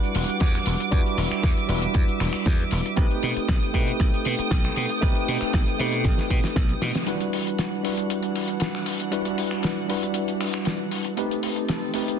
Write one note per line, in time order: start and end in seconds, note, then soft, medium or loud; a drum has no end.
0.00 0.89 G3 medium
0.00 2.93 G3 medium
0.00 0.89 D4 medium
0.00 0.89 E4 medium
0.00 0.89 F#4 medium
0.00 0.89 B4 medium
0.00 0.90 F#5 medium
0.00 2.93 D6 medium
0.00 closed hi-hat soft
0.15 0.24 E1 medium
0.15 open hi-hat loud
0.28 closed hi-hat medium
0.40 0.57 E2 medium
0.40 kick loud
0.40 snare loud
0.40 closed hi-hat medium
0.54 finger snap medium
0.54 closed hi-hat soft
0.66 0.75 E1 medium
0.66 open hi-hat loud
0.80 closed hi-hat medium
0.91 1.00 E2 medium
0.91 1.65 G3 medium
0.91 1.66 D4 medium
0.91 1.66 E4 medium
0.91 1.66 F#4 medium
0.91 1.66 B4 medium
0.91 2.95 E5 medium
0.91 kick loud
0.91 closed hi-hat medium
1.06 closed hi-hat soft
1.17 1.26 E1 medium
1.17 open hi-hat loud
1.31 finger snap medium
1.31 closed hi-hat medium
1.43 1.52 E2 medium
1.43 kick loud
1.43 snare loud
1.43 closed hi-hat medium
1.57 closed hi-hat soft
1.68 1.85 E1 medium
1.68 2.94 G3 medium
1.68 2.94 D4 medium
1.68 2.94 E4 medium
1.68 2.94 F#4 medium
1.68 2.95 B4 medium
1.68 open hi-hat loud
1.82 closed hi-hat medium
1.94 2.03 E2 medium
1.94 kick loud
1.94 closed hi-hat medium
2.08 muted slap bass stroke soft
2.08 closed hi-hat soft
2.20 2.29 E1 loud
2.20 finger snap medium
2.20 open hi-hat loud
2.33 finger snap medium
2.33 closed hi-hat medium
2.46 2.63 E2 medium
2.46 kick loud
2.46 snare loud
2.46 closed hi-hat medium
2.59 closed hi-hat soft
2.71 2.80 E1 medium
2.71 open hi-hat medium
2.86 closed hi-hat medium
2.96 3.06 B1 loud
2.96 3.70 A3 medium
2.96 3.71 C4 medium
2.96 3.71 D#4 medium
2.96 3.71 G4 medium
2.96 7.04 A4 medium
2.96 3.71 B4 medium
2.96 7.04 G5 medium
2.96 7.04 D#6 medium
2.96 kick loud
2.96 closed hi-hat medium
3.11 closed hi-hat soft
3.23 3.31 B2 medium
3.23 open hi-hat loud
3.36 muted slap bass stroke soft
3.36 closed hi-hat medium
3.48 3.57 B1 medium
3.48 kick loud
3.48 snare loud
3.48 closed hi-hat medium
3.62 closed hi-hat soft
3.73 3.91 B2 medium
3.73 4.99 A3 medium
3.73 4.99 C4 medium
3.73 4.99 D#4 medium
3.73 5.00 G4 medium
3.73 5.00 B4 medium
3.73 kick medium
3.73 open hi-hat medium
3.87 closed hi-hat medium
4.00 4.08 B1 medium
4.00 kick loud
4.00 closed hi-hat medium
4.13 closed hi-hat soft
4.25 4.34 B2 medium
4.25 open hi-hat loud
4.39 muted slap bass stroke soft
4.39 closed hi-hat medium
4.51 4.68 B1 medium
4.51 kick loud
4.51 snare loud
4.51 closed hi-hat medium
4.64 finger snap medium
4.64 closed hi-hat soft
4.76 4.85 B2 loud
4.76 open hi-hat loud
4.90 closed hi-hat medium
5.01 5.11 B1 loud
5.01 5.76 A3 medium
5.01 5.76 C4 medium
5.01 5.76 D#4 medium
5.01 5.76 G4 medium
5.01 5.77 B4 medium
5.01 kick loud
5.01 closed hi-hat medium
5.15 closed hi-hat soft
5.28 5.37 B2 medium
5.28 open hi-hat loud
5.41 finger snap soft
5.41 muted slap bass stroke soft
5.41 closed hi-hat medium
5.53 5.62 B1 medium
5.53 kick loud
5.53 snare loud
5.53 closed hi-hat medium
5.67 closed hi-hat soft
5.78 6.06 B2 medium
5.78 7.04 A3 medium
5.78 7.04 C4 medium
5.78 7.04 D#4 medium
5.78 7.05 G4 medium
5.78 7.05 B4 medium
5.78 open hi-hat loud
5.92 closed hi-hat medium
6.04 6.13 B1 medium
6.04 kick loud
6.04 snare medium
6.04 closed hi-hat medium
6.18 snare medium
6.18 closed hi-hat soft
6.30 6.39 B2 medium
6.30 kick medium
6.30 open hi-hat loud
6.44 muted slap bass stroke soft
6.44 snare medium
6.44 closed hi-hat medium
6.56 6.73 B1 medium
6.56 kick loud
6.56 snare medium
6.56 closed hi-hat medium
6.69 closed hi-hat soft
6.82 6.90 B2 medium
6.82 snare medium
6.82 open hi-hat loud
6.95 snare medium
6.95 closed hi-hat medium
7.06 11.14 E3 medium
7.06 7.81 G3 medium
7.06 7.81 D4 medium
7.06 11.14 D4 medium
7.06 7.81 E4 medium
7.06 7.82 F#4 medium
7.06 7.82 B4 medium
7.06 11.14 F#5 medium
7.06 closed hi-hat medium
7.06 shaker soft
7.20 closed hi-hat soft
7.33 open hi-hat loud
7.33 shaker medium
7.47 closed hi-hat medium
7.47 shaker soft
7.58 snare loud
7.58 closed hi-hat medium
7.83 9.09 G3 medium
7.83 9.09 D4 medium
7.83 9.09 E4 medium
7.83 9.10 F#4 medium
7.83 9.10 B4 medium
7.83 open hi-hat loud
7.83 shaker medium
7.97 closed hi-hat medium
7.97 shaker medium
8.10 closed hi-hat medium
8.10 shaker soft
8.23 closed hi-hat soft
8.35 open hi-hat medium
8.35 shaker medium
8.48 closed hi-hat medium
8.48 shaker soft
8.60 snare loud
8.60 closed hi-hat medium
8.60 shaker soft
8.75 finger snap medium
8.86 open hi-hat loud
8.86 shaker medium
9.00 closed hi-hat medium
9.00 shaker soft
9.11 9.86 G3 medium
9.11 9.86 D4 medium
9.11 9.86 E4 medium
9.11 9.86 F#4 medium
9.11 9.87 B4 medium
9.11 closed hi-hat medium
9.11 shaker soft
9.25 closed hi-hat medium
9.38 open hi-hat loud
9.38 shaker medium
9.51 finger snap medium
9.51 closed hi-hat medium
9.51 shaker medium
9.63 snare loud
9.63 closed hi-hat medium
9.63 shaker soft
9.88 11.14 G3 medium
9.88 11.14 D4 medium
9.88 11.15 E4 medium
9.88 11.15 F#4 medium
9.88 11.15 B4 medium
9.88 open hi-hat loud
9.88 shaker medium
10.02 closed hi-hat medium
10.02 shaker soft
10.14 closed hi-hat medium
10.14 shaker soft
10.28 closed hi-hat soft
10.41 finger snap medium
10.41 open hi-hat loud
10.41 shaker medium
10.53 finger snap medium
10.53 closed hi-hat medium
10.53 shaker medium
10.65 snare loud
10.65 closed hi-hat medium
10.65 shaker soft
10.91 open hi-hat medium
10.91 shaker medium
11.04 closed hi-hat medium
11.04 shaker medium
11.17 11.91 A3 medium
11.17 11.91 C4 medium
11.17 12.19 C4 medium
11.17 11.92 D#4 medium
11.17 12.19 D#4 medium
11.17 11.92 G4 medium
11.17 12.19 A4 medium
11.17 11.92 B4 medium
11.17 closed hi-hat medium
11.17 shaker soft
11.31 closed hi-hat soft
11.43 open hi-hat loud
11.43 shaker medium
11.56 closed hi-hat medium
11.56 shaker soft
11.69 snare loud
11.69 closed hi-hat medium
11.94 12.19 A3 medium
11.94 12.19 C4 medium
11.94 12.19 D#4 medium
11.94 12.19 G4 medium
11.94 12.19 B4 medium
11.94 open hi-hat medium
11.94 shaker medium
12.08 closed hi-hat medium
12.08 shaker soft